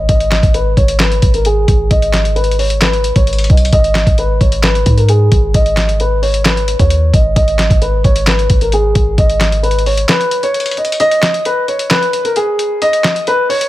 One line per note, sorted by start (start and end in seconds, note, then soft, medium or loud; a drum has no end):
0.09 0.42 G#1 loud
0.09 0.52 D#5 loud
0.09 kick loud
0.09 closed hi-hat medium
0.20 closed hi-hat medium
0.32 snare medium
0.32 clap medium
0.32 closed hi-hat medium
0.43 0.76 G#1 loud
0.43 kick loud
0.43 closed hi-hat medium
0.54 0.72 B4 medium
0.54 closed hi-hat medium
0.77 1.21 G#1 loud
0.77 0.95 C#5 medium
0.77 kick medium
0.77 closed hi-hat medium
0.88 closed hi-hat medium
1.00 1.32 B4 medium
1.00 snare loud
1.00 clap loud
1.00 closed hi-hat medium
1.12 closed hi-hat medium
1.22 1.66 G#1 loud
1.22 kick medium
1.22 closed hi-hat medium
1.34 1.43 A#4 medium
1.34 closed hi-hat medium
1.45 1.88 G#4 medium
1.45 closed hi-hat medium
1.68 1.90 G#1 loud
1.68 kick loud
1.68 closed hi-hat medium
1.91 3.12 G#1 loud
1.91 2.33 D#5 loud
1.91 kick loud
1.91 closed hi-hat medium
2.02 closed hi-hat medium
2.14 snare medium
2.14 clap medium
2.14 closed hi-hat medium
2.25 closed hi-hat medium
2.36 2.53 B4 medium
2.36 closed hi-hat medium
2.44 closed hi-hat medium
2.51 closed hi-hat medium
2.59 2.76 C#5 medium
2.59 open hi-hat medium
2.70 closed hi-hat medium
2.81 3.14 B4 medium
2.81 snare loud
2.81 clap loud
2.81 closed hi-hat medium
2.93 closed hi-hat medium
3.04 closed hi-hat medium
3.16 3.49 G#1 loud
3.16 3.48 C#5 medium
3.16 kick loud
3.16 closed hi-hat medium
3.27 closed hi-hat medium
3.33 closed hi-hat medium
3.38 closed hi-hat medium
3.44 closed hi-hat medium
3.50 3.72 B1 loud
3.50 3.68 D#5 medium
3.50 kick loud
3.50 closed hi-hat soft
3.57 closed hi-hat medium
3.65 closed hi-hat medium
3.73 4.05 G#1 loud
3.73 4.15 D#5 loud
3.73 kick loud
3.73 closed hi-hat medium
3.84 closed hi-hat medium
3.95 snare medium
3.95 clap medium
3.95 closed hi-hat medium
4.07 4.39 G#1 loud
4.07 kick loud
4.07 closed hi-hat medium
4.18 4.36 B4 medium
4.18 closed hi-hat medium
4.40 4.84 G#1 loud
4.40 4.58 C#5 medium
4.40 kick medium
4.40 closed hi-hat medium
4.52 closed hi-hat medium
4.63 4.95 B4 medium
4.63 snare loud
4.63 clap loud
4.63 closed hi-hat medium
4.75 closed hi-hat medium
4.86 5.30 G#2 loud
4.86 kick loud
4.86 closed hi-hat medium
4.97 5.06 A#4 medium
4.97 closed hi-hat medium
5.09 5.52 G#4 medium
5.09 closed hi-hat medium
5.32 5.54 G#1 loud
5.32 kick loud
5.32 closed hi-hat medium
5.54 6.75 G#1 loud
5.54 5.97 D#5 loud
5.54 kick loud
5.54 closed hi-hat medium
5.66 closed hi-hat medium
5.77 snare medium
5.77 clap medium
5.77 closed hi-hat medium
5.89 closed hi-hat medium
6.00 6.18 B4 medium
6.00 closed hi-hat medium
6.22 6.40 C#5 medium
6.22 open hi-hat medium
6.34 closed hi-hat medium
6.45 6.77 B4 medium
6.45 snare loud
6.45 clap loud
6.45 closed hi-hat medium
6.57 closed hi-hat medium
6.68 closed hi-hat medium
6.79 7.12 D#2 loud
6.79 7.11 C#5 medium
6.79 kick loud
6.79 closed hi-hat medium
6.90 closed hi-hat medium
7.14 7.35 G#1 loud
7.14 7.31 D#5 medium
7.14 kick loud
7.14 closed hi-hat medium
7.36 7.69 G#1 loud
7.36 7.79 D#5 loud
7.36 kick loud
7.36 closed hi-hat medium
7.48 closed hi-hat medium
7.59 snare medium
7.59 clap medium
7.59 closed hi-hat medium
7.70 8.03 G#1 loud
7.70 kick loud
7.70 closed hi-hat medium
7.82 7.99 B4 medium
7.82 closed hi-hat medium
8.04 8.48 G#1 loud
8.04 8.22 C#5 medium
8.04 kick medium
8.04 closed hi-hat medium
8.16 closed hi-hat medium
8.27 8.59 B4 medium
8.27 snare loud
8.27 clap loud
8.27 closed hi-hat medium
8.39 closed hi-hat medium
8.50 8.93 G#1 loud
8.50 kick loud
8.50 closed hi-hat medium
8.61 8.70 A#4 medium
8.61 closed hi-hat medium
8.72 9.16 G#4 medium
8.72 closed hi-hat medium
8.95 9.17 G#1 loud
8.95 kick loud
8.95 closed hi-hat medium
9.18 10.05 G#1 loud
9.18 9.61 D#5 loud
9.18 kick loud
9.18 closed hi-hat medium
9.30 closed hi-hat medium
9.41 snare medium
9.41 clap medium
9.41 closed hi-hat medium
9.52 closed hi-hat medium
9.63 9.81 B4 medium
9.63 closed hi-hat medium
9.71 closed hi-hat medium
9.79 closed hi-hat medium
9.86 10.04 C#5 medium
9.86 open hi-hat medium
9.97 closed hi-hat medium
10.09 10.41 B4 medium
10.09 snare loud
10.09 clap loud
10.09 closed hi-hat medium
10.21 closed hi-hat medium
10.31 closed hi-hat medium
10.43 10.75 C#5 medium
10.43 closed hi-hat medium
10.54 closed hi-hat medium
10.60 closed hi-hat medium
10.66 closed hi-hat medium
10.71 closed hi-hat medium
10.77 10.95 D#5 medium
10.77 closed hi-hat soft
10.85 closed hi-hat medium
10.92 closed hi-hat medium
11.00 11.43 D#5 loud
11.00 closed hi-hat medium
11.11 closed hi-hat medium
11.23 snare medium
11.23 clap medium
11.23 closed hi-hat medium
11.34 closed hi-hat medium
11.45 11.63 B4 medium
11.45 closed hi-hat medium
11.68 11.86 C#5 medium
11.68 closed hi-hat medium
11.79 closed hi-hat medium
11.91 12.23 B4 medium
11.91 snare loud
11.91 clap loud
11.91 closed hi-hat medium
12.03 closed hi-hat medium
12.13 closed hi-hat medium
12.25 12.33 A#4 medium
12.25 closed hi-hat medium
12.36 12.79 G#4 medium
12.36 closed hi-hat medium
12.59 closed hi-hat medium
12.82 13.25 D#5 loud
12.82 closed hi-hat medium
12.93 closed hi-hat medium
13.04 snare medium
13.04 clap medium
13.04 closed hi-hat medium
13.16 closed hi-hat medium
13.27 13.45 B4 medium
13.27 closed hi-hat medium
13.49 13.67 C#5 medium
13.49 open hi-hat medium
13.61 closed hi-hat medium